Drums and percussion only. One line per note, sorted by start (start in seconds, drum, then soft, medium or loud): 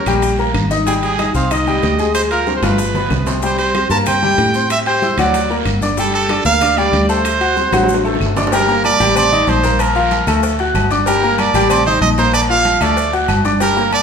0.06 high bongo soft
0.06 high timbale medium
0.06 short guiro medium
0.06 claves medium
0.06 maracas medium
0.22 high bongo medium
0.22 high conga soft
0.22 high timbale medium
0.22 long guiro medium
0.22 maracas medium
0.38 high bongo soft
0.38 maracas soft
0.54 high bongo soft
0.54 low bongo medium
0.54 high conga medium
0.54 high timbale medium
0.54 short guiro medium
0.54 claves medium
0.54 maracas soft
0.71 high conga medium
0.71 short guiro medium
0.71 maracas medium
0.87 high bongo medium
0.87 long guiro medium
0.87 maracas medium
1.03 high bongo soft
1.03 high conga soft
1.03 high timbale medium
1.03 maracas soft
1.19 high bongo medium
1.19 high conga medium
1.19 high timbale medium
1.19 short guiro medium
1.19 claves medium
1.19 maracas soft
1.35 high bongo soft
1.35 short guiro medium
1.35 maracas medium
1.51 high bongo medium
1.51 high conga soft
1.51 low conga medium
1.51 high timbale medium
1.51 long guiro medium
1.51 claves medium
1.51 maracas medium
1.67 high conga soft
1.67 low conga medium
1.67 maracas soft
1.83 high bongo soft
1.83 low bongo medium
1.83 high conga medium
1.83 high timbale medium
1.83 low timbale medium
1.83 short guiro medium
1.83 maracas soft
1.99 short guiro medium
1.99 maracas medium
2.15 high bongo medium
2.15 high conga soft
2.15 high timbale medium
2.15 long guiro medium
2.15 claves medium
2.15 maracas medium
2.31 high bongo soft
2.31 high conga soft
2.31 high timbale medium
2.31 maracas soft
2.47 high bongo medium
2.47 high conga medium
2.47 high timbale medium
2.47 short guiro medium
2.47 maracas soft
2.63 high bongo soft
2.63 high conga loud
2.63 low timbale medium
2.63 short guiro medium
2.63 claves medium
2.63 maracas medium
2.78 high bongo medium
2.78 long guiro medium
2.78 maracas medium
2.94 high bongo soft
2.94 low conga medium
2.94 low timbale medium
2.94 maracas soft
3.10 high bongo soft
3.10 low bongo medium
3.10 low conga medium
3.10 low timbale medium
3.10 short guiro medium
3.10 claves medium
3.10 maracas soft
3.26 low conga medium
3.26 low timbale medium
3.26 short guiro medium
3.26 maracas medium
3.42 high bongo medium
3.42 high conga soft
3.42 long guiro medium
3.42 maracas medium
3.58 high bongo soft
3.58 high conga soft
3.58 high timbale medium
3.58 maracas soft
3.74 high bongo medium
3.74 high conga medium
3.74 high timbale loud
3.74 short guiro medium
3.74 claves medium
3.74 maracas soft
3.90 high bongo soft
3.90 short guiro medium
3.90 maracas medium
4.06 high bongo medium
4.06 high conga soft
4.06 low conga medium
4.06 high timbale medium
4.06 long guiro medium
4.06 claves medium
4.06 maracas medium
4.23 high conga soft
4.23 low conga medium
4.38 high bongo soft
4.38 low bongo medium
4.38 high conga medium
4.38 high timbale medium
4.38 short guiro medium
4.38 maracas soft
4.54 short guiro medium
4.54 maracas medium
4.70 high bongo medium
4.70 high conga soft
4.70 high timbale medium
4.70 claves medium
4.70 maracas medium
4.86 high bongo soft
4.86 high conga soft
4.86 high timbale medium
4.86 maracas soft
5.02 high bongo medium
5.02 high conga loud
5.02 short guiro medium
5.02 maracas soft
5.18 high timbale medium
5.18 short guiro medium
5.18 claves medium
5.18 maracas medium
5.34 high bongo medium
5.34 high conga soft
5.34 high timbale medium
5.34 long guiro medium
5.34 maracas medium
5.50 high bongo soft
5.50 high conga soft
5.50 maracas soft
5.65 high bongo soft
5.65 low bongo medium
5.65 high conga medium
5.65 high timbale loud
5.65 short guiro medium
5.65 claves medium
5.65 maracas soft
5.81 high conga medium
5.81 short guiro medium
5.81 maracas medium
5.97 high bongo medium
5.97 high conga soft
5.97 long guiro medium
5.97 maracas medium
6.13 high bongo soft
6.13 high conga soft
6.13 high timbale medium
6.13 maracas soft
6.29 high bongo medium
6.29 high conga medium
6.29 high timbale medium
6.29 short guiro medium
6.29 claves medium
6.29 maracas soft
6.45 high bongo soft
6.45 short guiro medium
6.45 maracas medium
6.61 high bongo medium
6.61 high conga soft
6.61 low conga medium
6.61 high timbale medium
6.61 claves medium
6.61 maracas medium
6.77 high bongo soft
6.77 high conga soft
6.77 maracas soft
6.93 high bongo soft
6.93 low bongo medium
6.93 high conga medium
6.93 high timbale medium
6.93 short guiro medium
6.93 maracas soft
7.09 short guiro medium
7.09 maracas medium
7.25 high bongo medium
7.25 high timbale medium
7.25 claves medium
7.25 maracas medium
7.41 high bongo soft
7.41 high conga soft
7.41 high timbale medium
7.41 maracas soft
7.57 high bongo medium
7.57 high conga loud
7.57 short guiro medium
7.57 maracas soft
7.72 high bongo loud
7.72 high conga loud
7.72 high timbale medium
7.72 short guiro medium
7.72 claves medium
7.72 maracas medium
7.83 high bongo medium
7.83 high timbale medium
7.89 long guiro medium
7.89 maracas medium
7.94 high bongo medium
7.94 high timbale medium
8.05 maracas soft
8.15 low bongo medium
8.15 low timbale medium
8.21 low conga medium
8.21 short guiro medium
8.21 claves medium
8.21 maracas soft
8.26 low timbale medium
8.36 low bongo medium
8.36 low conga medium
8.36 low timbale loud
8.36 short guiro medium
8.36 maracas medium
8.47 low bongo medium
8.47 low timbale loud
8.52 cowbell loud
8.52 high conga soft
8.52 low agogo medium
8.52 long guiro medium
8.52 maracas medium
8.69 high conga soft
8.69 maracas soft
8.84 cowbell medium
8.84 high conga loud
8.84 low agogo loud
8.84 short guiro medium
8.84 claves medium
8.84 maracas soft
9.01 low agogo medium
9.01 short guiro medium
9.01 maracas medium
9.15 cowbell loud
9.15 high conga soft
9.15 low conga medium
9.15 low agogo loud
9.15 claves medium
9.15 maracas medium
9.32 high conga soft
9.32 low conga medium
9.32 maracas soft
9.47 cowbell medium
9.47 high conga medium
9.47 low timbale medium
9.47 low agogo medium
9.47 short guiro medium
9.47 maracas soft
9.63 cowbell medium
9.63 high conga medium
9.63 short guiro medium
9.63 maracas medium
9.79 cowbell loud
9.79 high conga soft
9.79 low agogo loud
9.79 long guiro medium
9.79 claves medium
9.79 maracas medium
9.95 maracas soft
10.11 cowbell medium
10.11 high conga medium
10.11 low agogo medium
10.11 short guiro medium
10.11 maracas soft
10.27 low agogo loud
10.27 short guiro medium
10.27 claves medium
10.27 maracas medium
10.43 cowbell loud
10.43 high conga soft
10.43 long guiro medium
10.43 maracas medium
10.59 cowbell medium
10.59 high conga soft
10.59 maracas soft
10.75 cowbell medium
10.75 high conga medium
10.75 low timbale medium
10.75 low agogo loud
10.75 short guiro medium
10.75 claves medium
10.75 maracas soft
10.91 cowbell medium
10.91 high conga medium
10.91 short guiro medium
10.91 maracas medium
11.06 cowbell loud
11.06 low agogo medium
11.06 maracas medium
11.23 high conga soft
11.23 maracas soft
11.38 cowbell medium
11.38 high conga loud
11.38 low agogo loud
11.38 short guiro medium
11.38 claves medium
11.38 maracas soft
11.54 low agogo medium
11.54 short guiro medium
11.54 maracas medium
11.70 cowbell loud
11.70 high conga soft
11.70 low conga medium
11.70 low agogo loud
11.70 claves medium
11.70 maracas medium
11.86 high conga soft
11.86 low conga medium
11.86 maracas soft
12.02 cowbell medium
12.02 high conga medium
12.02 low agogo medium
12.02 short guiro medium
12.02 maracas soft
12.18 cowbell medium
12.18 short guiro medium
12.18 maracas medium
12.33 cowbell loud
12.33 low agogo loud
12.33 long guiro medium
12.33 claves medium
12.33 maracas medium
12.50 high conga soft
12.50 maracas soft
12.65 cowbell medium
12.65 high conga medium
12.65 low agogo medium
12.65 short guiro medium
12.65 maracas soft
12.81 low agogo loud
12.81 short guiro medium
12.81 claves medium
12.81 maracas medium
12.97 cowbell loud
12.97 high conga soft
12.97 long guiro medium
12.97 maracas medium
13.13 cowbell medium
13.13 high conga soft
13.13 maracas soft
13.28 cowbell medium
13.28 high conga medium
13.28 low timbale medium
13.28 low agogo loud
13.28 short guiro medium
13.28 claves medium
13.28 maracas soft
13.45 cowbell medium
13.45 high conga medium
13.45 short guiro medium
13.45 maracas medium
13.60 cowbell loud
13.60 high conga soft
13.60 low agogo medium
13.60 long guiro medium
13.60 maracas medium
13.76 high conga soft
13.76 maracas soft
13.92 cowbell medium
13.92 high conga medium
13.92 low agogo loud
13.92 short guiro medium
13.92 claves medium
13.92 maracas soft